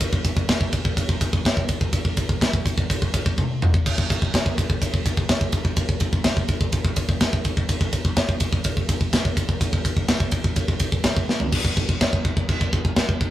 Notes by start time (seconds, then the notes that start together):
0.01 kick, ride
0.13 kick
0.25 kick, ride
0.37 kick
0.49 kick, snare, ride
0.61 kick
0.73 kick, ride
0.85 kick
0.97 kick, ride
1.09 kick
1.21 kick, ride
1.33 kick
1.45 kick, snare, ride
1.57 kick
1.69 kick, ride
1.81 kick
1.93 kick, ride
2.05 kick
2.17 kick, ride
2.29 kick
2.41 kick, snare, ride
2.54 kick
2.66 kick, ride
2.78 kick
2.90 kick, ride
3.02 kick
3.14 kick, ride
3.26 kick
3.38 kick, high tom
3.62 mid tom
3.74 kick
3.86 kick, crash
3.98 kick
4.10 kick, ride
4.22 kick
4.34 kick, snare, ride
4.46 kick
4.58 kick, ride
4.70 kick
4.82 kick, ride
4.94 kick
5.06 kick, ride
5.17 kick
5.29 kick, snare, ride
5.41 kick
5.52 kick, ride
5.65 kick
5.76 kick, ride
5.89 kick
6.00 kick, ride
6.13 kick
6.24 kick, snare, ride
6.37 kick
6.48 kick, ride
6.61 kick
6.72 kick, ride
6.85 kick
6.96 kick, ride
7.09 kick
7.21 kick, snare, ride
7.33 kick
7.45 kick, ride
7.57 kick
7.69 kick, ride
7.81 kick
7.93 kick, ride
8.05 kick
8.17 kick, snare, ride
8.29 kick
8.40 kick, ride
8.53 kick
8.64 kick, ride
8.77 kick
8.89 kick, ride
9.01 kick
9.13 kick, snare, ride
9.25 kick
9.37 kick, ride
9.49 kick
9.61 kick, ride
9.73 kick
9.85 kick, ride
9.97 kick
10.08 kick, snare, ride
10.20 kick
10.31 kick, ride
10.44 kick
10.56 kick, ride
10.68 kick
10.80 kick, ride
10.92 kick
11.04 kick, snare, ride
11.17 kick
11.29 snare
11.40 floor tom
11.52 kick, crash, china
11.65 kick
11.77 kick
11.89 kick
12.01 kick, snare, china
12.13 kick
12.25 kick
12.37 kick
12.49 kick, china
12.61 kick
12.73 kick
12.85 kick
12.96 kick, snare, china
13.09 kick
13.21 kick